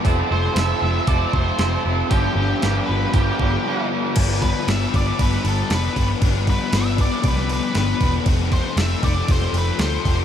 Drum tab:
CC |----------------|----------------|x-x-x-x-x-x-x-x-|x-x-x-x-x-x-x-x-|
HH |o---o---o---o---|o---o---o-------|----------------|----------------|
SD |----o-------o---|----o-----------|----o----o--o---|----o----o--o---|
BD |o-------o-o-----|o-------o-o-----|o-o---o-o-----o-|o-o---o-o-----o-|

CC |x-x-x-x-x-x-x-x-|
HH |----------------|
SD |----o----o--o---|
BD |o-o---o-o-----o-|